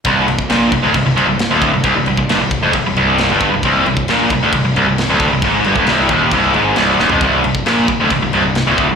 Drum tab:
CC |x-x-x-x-x-x-x-x-|x-x-x-x-x-x-x-x-|x-x-x-x-x-x-x-x-|x-x-x-x-x-x-x---|
SD |----o-------o---|----o-------o---|----o-------o---|----o-------o-o-|
FT |----------------|----------------|----------------|---------------o|
BD |o--o--o-o-----o-|o--o--o-o-----o-|o--o--o-o-----o-|o--o--o-o-------|

CC |x-x-x-x-x-x-x-x-|
SD |----o-------o---|
FT |----------------|
BD |o--o--o-o-----o-|